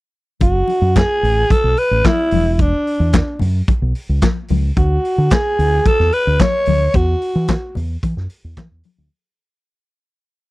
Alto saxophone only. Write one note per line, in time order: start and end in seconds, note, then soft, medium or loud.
0.42 0.98 F#4 medium
0.97 1.53 G#4 loud
1.51 1.80 A4 loud
1.79 2.08 B4 medium
2.06 2.54 E4 loud
2.54 2.63 E4 medium
2.61 3.42 D4 medium
4.77 5.34 F#4 medium
5.33 5.89 G#4 loud
5.87 6.15 A4 loud
6.14 6.43 B4 medium
6.41 6.97 C#5 loud
6.96 7.76 F#4 medium